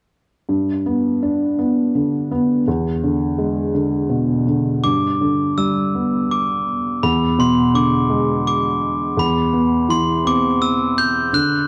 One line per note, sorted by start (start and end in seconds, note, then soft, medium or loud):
0.49 2.62 G2 soft
0.86 1.57 B3 soft
1.22 2.62 D4 soft
1.59 2.30 B3 soft
1.95 2.64 D3 soft
2.31 2.66 B3 medium
2.67 4.79 E2 medium
3.03 3.73 D3 soft
3.38 4.79 G#3 soft
3.74 4.45 D3 soft
4.09 4.80 B2 soft
4.47 4.82 D3 soft
4.83 6.99 G2 soft
4.83 5.53 D6 medium
5.21 6.63 D3 soft
5.58 6.99 G3 soft
5.58 6.27 E6 medium
5.95 7.00 B3 soft
6.32 7.05 D6 medium
7.03 9.14 E2 medium
7.03 7.40 B5 medium
7.38 8.78 B2 soft
7.38 7.72 C6 medium
7.74 9.13 D3 soft
7.74 8.46 D6 medium
8.09 9.14 G#3 soft
8.47 9.20 D6 medium
9.17 11.28 E2 medium
9.17 9.86 B5 medium
9.53 10.92 B3 medium
9.89 11.29 E3 soft
9.89 10.06 C6 medium
10.25 11.30 C4 soft
10.25 10.59 D6 medium
10.62 10.98 E6 medium
10.98 11.14 G6 medium
11.33 11.68 D3 medium
11.33 11.68 F#6 medium